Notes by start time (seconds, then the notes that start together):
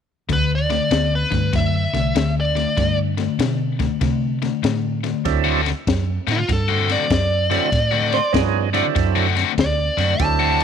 0.29 D2 D3 A3 B4, kick, snare, ride
0.55 D5
0.70 D3 A3, snare, ride
0.91 D2 D3 B3, snare, ride
1.15 B4
1.31 G2 D3 A3, kick, snare, ride
1.53 F#2 D3 A3 E5, kick, snare, ride
1.93 C2 D3 A3, snare, ride
2.15 D2 D3 A3, snare, ride
2.40 D5
2.55 D3 A3, snare, ride
2.77 G2 D3 A3, kick, snare, ride
3.17 D3 A3, snare, ride
3.39 B2 D3 B3, snare, ride
3.79 D3 A3, kick, snare, ride
4.01 C3 D3 A3, kick, snare, ride
4.42 D3 A3, snare, ride
4.63 A2 D3 A3, snare, ride
5.03 D3 A3, snare, ride
5.25 D2 F#3 C4 D4 E4 A4, kick, snare, ride
5.44 D3 A3 C4 F#4
5.66 snare, ride
5.87 F#2, kick, snare, ride
6.27 A2 D3 A3 C4 F#4, snare, ride
6.32 F4
6.38 muted overdriven electric guitar stroke
6.49 G2 A4, muted overdriven electric guitar stroke, kick, snare, ride
6.68 D3 A3 C4 F#4
6.89 D3 A3 C4 F#4 D5, snare, ride
7.10 F#2 D5, kick, snare, ride
7.50 D3 F#3 A3 C4 D4 E4 F#4 A4, snare, ride
7.72 A2, kick, snare, ride
7.91 D3 A3 C4 F#4
8.12 C5, snare, ride
8.33 G2 F3 B3 C#4 D#4 G#4 D5, kick, snare, ride
8.73 D3 F#3 A3 C4 D4 E4 F#4 A4 D5, snare, ride
8.84 muted overdriven electric guitar stroke
8.95 F#2, muted overdriven electric guitar stroke, kick, snare, ride
9.16 D3 A3 C4 F#4
9.36 D3 A3 C4 F#4, snare, ride
9.58 D2 D5, kick, snare, ride
9.97 F#2 D3 A3 C4 F#4, snare, ride
10.19 D2 F#3 C4 D4 E4 A4 A5, kick, snare, ride
10.39 D3 A3 C4 F#4
10.60 ride